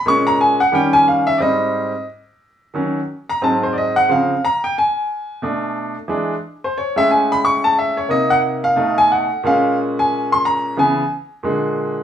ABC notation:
X:1
M:4/4
L:1/8
Q:"Swing" 1/4=179
K:Bbmix
V:1 name="Grand piano"
_d' b a _g =g a f _f | [K:Dblyd] [=de]4 z4 | z3 b =a c [=de] _g | f2 b g a4- |
a2 z4 z c | ^c =e ^g _c' ^c' =a e c | e _g z f2 a ^f2 | f2 z a2 c' b2 |
a2 z6 |]
V:2 name="Grand piano" clef=bass
[B,,A,_D]3 z [E,G,D]4 | [K:Dblyd] [A,,G,C]3 z4 z | [E,_G,D] z3 [A,,G,C]4 | [D,F,C] z6 z |
[=B,,=A,=D]3 z [=E,^G,D] z3 | z [=A,,^G,^C]6- [A,,G,C] | [C,B,E]4 [=B,,=A,^D]3 z | [B,,A,D]8 |
[D,_F,_C] z3 [B,,=D,A,]4 |]